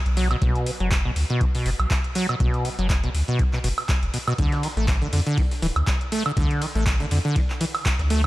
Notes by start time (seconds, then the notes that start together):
0.06 B1, closed hi-hat
0.17 F#3, open hi-hat
0.31 B2, closed hi-hat, high woodblock
0.42 B1 B2, kick, closed hi-hat
0.55 closed hi-hat
0.66 C3, open hi-hat
0.80 F#1 F#3, closed hi-hat
0.91 kick, clap, closed hi-hat
1.05 B2
1.16 D2, open hi-hat
1.30 B2, closed hi-hat
1.41 C3, kick, closed hi-hat
1.55 B2, open hi-hat
1.66 F#1 C3, open hi-hat
1.79 B1, closed hi-hat, high woodblock
1.91 kick, clap, closed hi-hat
2.04 closed hi-hat
2.15 F#3, open hi-hat
2.29 B2, closed hi-hat, high woodblock
2.40 B1 B2, kick, closed hi-hat
2.54 closed hi-hat
2.65 C3, open hi-hat
2.79 F#1 F#3, closed hi-hat
2.90 kick, clap, closed hi-hat
3.03 B2, closed hi-hat
3.14 D2, open hi-hat
3.28 B2, closed hi-hat
3.39 C3, kick, closed hi-hat
3.53 B2, clap
3.64 F#1 B2, open hi-hat
3.78 open hi-hat, high woodblock
3.89 kick, clap, closed hi-hat
4.03 F#1, closed hi-hat
4.14 B2, open hi-hat
4.27 B2, closed hi-hat, high woodblock
4.38 D2 D3, kick, closed hi-hat, ride
4.52 snare, closed hi-hat
4.63 E3, open hi-hat, ride
4.77 A1 A3, closed hi-hat
4.88 kick, snare, clap, closed hi-hat, ride
5.02 D3
5.13 F2 D3, open hi-hat, ride
5.26 D3, closed hi-hat, ride
5.38 E3, kick, closed hi-hat, open hi-hat
5.51 snare, open hi-hat
5.62 D1 E3, open hi-hat, ride
5.76 D2, closed hi-hat, high woodblock
5.87 kick, snare, clap, closed hi-hat, ride
6.01 closed hi-hat
6.12 A3, open hi-hat, ride
6.26 D3, closed hi-hat, high woodblock
6.37 D2 D3, kick, closed hi-hat, ride
6.51 closed hi-hat
6.62 E3, open hi-hat, ride
6.75 A1 A3, snare, closed hi-hat
6.86 kick, snare, clap, closed hi-hat, ride
7.00 D3, snare, closed hi-hat
7.11 F2 D3, open hi-hat, ride
7.25 D3, closed hi-hat
7.36 E3, kick, closed hi-hat, ride
7.50 clap
7.61 E3, open hi-hat, ride
7.74 open hi-hat, ride, high woodblock
7.85 kick, snare, clap, closed hi-hat, ride
7.99 D2, snare, closed hi-hat
8.10 A3, open hi-hat, ride